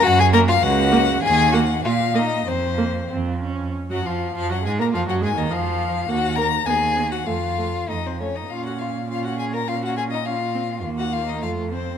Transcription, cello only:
\new Staff \with { instrumentName = "Cello" } { \clef bass \time 2/4 \key bes \minor \tempo 4 = 101 ges,4 des,4 | ees,4 bes,4 | f,4 f,4 | r16 ges,16 f,8 f,16 ges,16 aes,16 bes,16 |
f,16 ges,16 aes,16 ees,16 f,4 | ees,4 dis,4 | f,4 f,4 | bes,2~ |
bes,2 | ees,4 f,4 | }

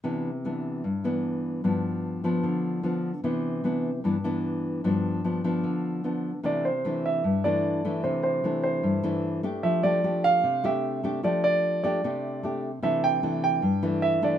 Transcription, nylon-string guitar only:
\new Staff \with { instrumentName = "Nylon-string guitar" } { \time 4/4 \key c \major \tempo 4 = 150 << { <e b d'>8 r8 <e b d'>4 r8 <e b d'>4. | <f b d'>4. <f b d'>4. <f b d'>8 r8 | <e b d'>4 <e b d'>8 r8 <e b d'>8 <e b d'>4. | <f b d'>4 <f b d'>8 <f b d'>4. <f b d'>8 r8 |
<e a d'>8 r8 <e a d'>4 r8 <e a d'>4 <e a d'>8~ | <e a d'>4 <e a d'>4. <e a d'>4 <a d' g'>8~ | <a d' g'>8 <a d' g'>8 <a d' g'>4. <a d' g'>4 <a d' g'>8 | <a d' g'>4. <a d' g'>8 <a d' g'>4 <a d' g'>8 r8 |
<e a d'>4 <e a d'>4 r8 <e a d'>4 <e a d'>8 | } \\ { c2 g,2 | g,2 d2 | c2 g,2 | g,2 d2 |
c2 g,2 | c2 g,2 | f2 c2 | f2 c2 |
c2 g,2 | } >> }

